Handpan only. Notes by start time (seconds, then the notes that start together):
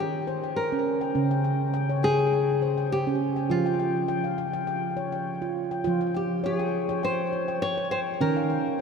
Already playing: D#3 G5
0.27 C5
0.44 G5
0.72 C#4
1.01 G5
1.15 C#3 C#4
1.31 G5
1.44 G5
1.74 G5
1.89 C#5
2.03 G5
2.19 G5
2.33 G5
2.62 C5
2.78 G5
3.07 C#4
3.36 G5
3.50 F3 F4
3.66 G5
3.79 G5
4.08 G5
4.24 F5
4.38 G5
4.53 G5
4.67 G5
4.97 C#5
5.12 G5
5.42 F4
5.71 G5
5.84 F3 F4 G5
6.01 G5
6.14 G5
6.44 C#5
6.59 G5
6.89 C#5 G5
7.03 G5
7.33 C#5
7.48 G5
7.77 C#5
7.92 G5
8.21 D#3 C#4 G5
8.37 F5
8.50 G5